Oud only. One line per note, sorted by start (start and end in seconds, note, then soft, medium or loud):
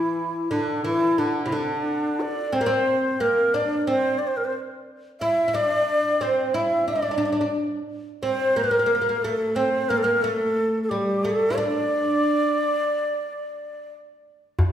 0.00 0.50 E3 medium
0.51 0.82 D3 medium
0.85 1.18 E3 medium
1.18 1.46 D3 medium
1.46 1.52 C3 soft
1.52 2.56 D3 medium
2.52 2.59 C4 medium
2.61 2.67 A#3 medium
2.66 3.16 C4 medium
3.20 3.55 A#3 medium
3.54 3.87 D4 medium
3.87 4.16 C4 medium
5.21 5.47 E4 medium
5.48 5.54 E4 medium
5.54 6.21 D4 medium
6.21 6.54 C4 medium
6.54 6.87 E4 medium
6.88 6.94 D4 medium
6.96 7.01 D4 soft
7.02 7.10 D4 soft
7.11 7.16 D4 soft
7.18 7.24 D4 medium
7.25 7.31 D4 soft
7.32 7.40 D4 soft
7.41 7.48 D4 soft
8.23 8.57 C4 medium
8.56 8.62 A#3 medium
8.64 8.70 A#3 soft
8.71 8.78 A#3 medium
8.79 8.85 A#3 soft
8.86 8.94 A#3 medium
8.95 9.00 A#3 soft
9.01 9.08 A#3 medium
9.09 9.17 A#3 soft
9.24 9.59 A3 medium
9.56 9.91 C4 medium
9.90 10.03 A#3 medium
10.04 10.23 A#3 medium
10.24 10.87 A3 medium
10.91 11.24 G3 medium
11.24 11.52 A3 medium
11.50 11.57 E4 medium
11.58 13.88 D4 medium